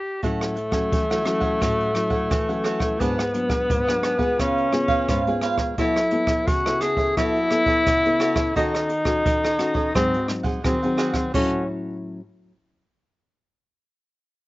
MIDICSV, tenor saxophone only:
0, 0, Header, 1, 2, 480
1, 0, Start_track
1, 0, Key_signature, 3, "major"
1, 0, Tempo, 694444
1, 160, Time_signature, 4, 2, 24, 8
1, 10007, End_track
2, 0, Start_track
2, 0, Title_t, "Tenor saxophone"
2, 0, Program_c, 0, 66
2, 0, Note_on_c, 0, 67, 89
2, 133, Note_off_c, 0, 67, 0
2, 162, Note_on_c, 0, 57, 96
2, 2073, Note_on_c, 0, 59, 96
2, 2083, Note_off_c, 0, 57, 0
2, 3040, Note_on_c, 0, 61, 95
2, 3050, Note_off_c, 0, 59, 0
2, 3812, Note_off_c, 0, 61, 0
2, 3995, Note_on_c, 0, 64, 106
2, 4475, Note_on_c, 0, 66, 101
2, 4485, Note_off_c, 0, 64, 0
2, 4705, Note_on_c, 0, 68, 111
2, 4716, Note_off_c, 0, 66, 0
2, 4951, Note_off_c, 0, 68, 0
2, 4955, Note_on_c, 0, 64, 121
2, 5888, Note_off_c, 0, 64, 0
2, 5920, Note_on_c, 0, 63, 113
2, 6851, Note_off_c, 0, 63, 0
2, 6879, Note_on_c, 0, 60, 96
2, 7152, Note_off_c, 0, 60, 0
2, 7361, Note_on_c, 0, 60, 86
2, 7812, Note_off_c, 0, 60, 0
2, 7840, Note_on_c, 0, 61, 82
2, 8063, Note_off_c, 0, 61, 0
2, 10007, End_track
0, 0, End_of_file